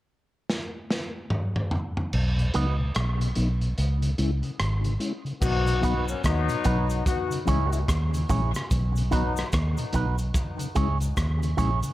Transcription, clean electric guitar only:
0, 0, Header, 1, 2, 480
1, 0, Start_track
1, 0, Key_signature, 5, "major"
1, 0, Tempo, 821918
1, 1243, Time_signature, 4, 2, 24, 8
1, 6968, End_track
2, 0, Start_track
2, 0, Title_t, "Clean electric guitar"
2, 0, Program_c, 0, 27
2, 1485, Note_on_c, 0, 66, 82
2, 1488, Note_on_c, 0, 71, 79
2, 1494, Note_on_c, 0, 75, 83
2, 1604, Note_off_c, 0, 66, 0
2, 1606, Note_off_c, 0, 71, 0
2, 1609, Note_off_c, 0, 75, 0
2, 3402, Note_on_c, 0, 63, 68
2, 3409, Note_on_c, 0, 66, 72
2, 3414, Note_on_c, 0, 71, 81
2, 3524, Note_off_c, 0, 63, 0
2, 3527, Note_off_c, 0, 66, 0
2, 3530, Note_off_c, 0, 71, 0
2, 3883, Note_on_c, 0, 63, 77
2, 3886, Note_on_c, 0, 66, 79
2, 3891, Note_on_c, 0, 71, 93
2, 4004, Note_off_c, 0, 63, 0
2, 4006, Note_off_c, 0, 66, 0
2, 4008, Note_off_c, 0, 71, 0
2, 4362, Note_on_c, 0, 64, 74
2, 4368, Note_on_c, 0, 68, 75
2, 4372, Note_on_c, 0, 73, 88
2, 4484, Note_off_c, 0, 64, 0
2, 4487, Note_off_c, 0, 68, 0
2, 4489, Note_off_c, 0, 73, 0
2, 4844, Note_on_c, 0, 64, 90
2, 4849, Note_on_c, 0, 68, 95
2, 4852, Note_on_c, 0, 73, 95
2, 4965, Note_off_c, 0, 64, 0
2, 4967, Note_off_c, 0, 68, 0
2, 4969, Note_off_c, 0, 73, 0
2, 5320, Note_on_c, 0, 63, 78
2, 5329, Note_on_c, 0, 66, 83
2, 5330, Note_on_c, 0, 71, 88
2, 5443, Note_off_c, 0, 63, 0
2, 5447, Note_off_c, 0, 66, 0
2, 5448, Note_off_c, 0, 71, 0
2, 5806, Note_on_c, 0, 63, 87
2, 5811, Note_on_c, 0, 66, 92
2, 5815, Note_on_c, 0, 71, 95
2, 5926, Note_off_c, 0, 63, 0
2, 5928, Note_off_c, 0, 66, 0
2, 5930, Note_off_c, 0, 71, 0
2, 6279, Note_on_c, 0, 64, 83
2, 6284, Note_on_c, 0, 68, 92
2, 6289, Note_on_c, 0, 73, 93
2, 6402, Note_off_c, 0, 64, 0
2, 6404, Note_off_c, 0, 68, 0
2, 6407, Note_off_c, 0, 73, 0
2, 6757, Note_on_c, 0, 64, 84
2, 6761, Note_on_c, 0, 68, 83
2, 6765, Note_on_c, 0, 73, 104
2, 6881, Note_off_c, 0, 64, 0
2, 6883, Note_off_c, 0, 68, 0
2, 6885, Note_off_c, 0, 73, 0
2, 6968, End_track
0, 0, End_of_file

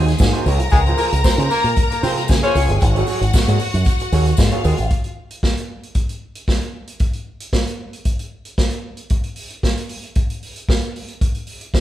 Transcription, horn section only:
0, 0, Header, 1, 2, 480
1, 0, Start_track
1, 0, Tempo, 524476
1, 662, Time_signature, 4, 2, 24, 8
1, 10803, End_track
2, 0, Start_track
2, 0, Title_t, "Horn section"
2, 0, Program_c, 0, 61
2, 652, Note_on_c, 0, 68, 109
2, 653, Note_on_c, 0, 56, 96
2, 731, Note_off_c, 0, 68, 0
2, 732, Note_off_c, 0, 56, 0
2, 894, Note_on_c, 0, 58, 73
2, 895, Note_on_c, 0, 70, 83
2, 972, Note_off_c, 0, 58, 0
2, 972, Note_off_c, 0, 70, 0
2, 1139, Note_on_c, 0, 60, 80
2, 1142, Note_on_c, 0, 72, 80
2, 1215, Note_off_c, 0, 60, 0
2, 1217, Note_off_c, 0, 72, 0
2, 1376, Note_on_c, 0, 70, 121
2, 1378, Note_on_c, 0, 58, 110
2, 1569, Note_off_c, 0, 70, 0
2, 1570, Note_off_c, 0, 58, 0
2, 1743, Note_on_c, 0, 58, 82
2, 1746, Note_on_c, 0, 70, 88
2, 1834, Note_off_c, 0, 58, 0
2, 1836, Note_off_c, 0, 70, 0
2, 1862, Note_on_c, 0, 60, 89
2, 1862, Note_on_c, 0, 72, 84
2, 1937, Note_off_c, 0, 60, 0
2, 1937, Note_off_c, 0, 72, 0
2, 2227, Note_on_c, 0, 73, 112
2, 2228, Note_on_c, 0, 61, 96
2, 2417, Note_off_c, 0, 73, 0
2, 2418, Note_off_c, 0, 61, 0
2, 10803, End_track
0, 0, End_of_file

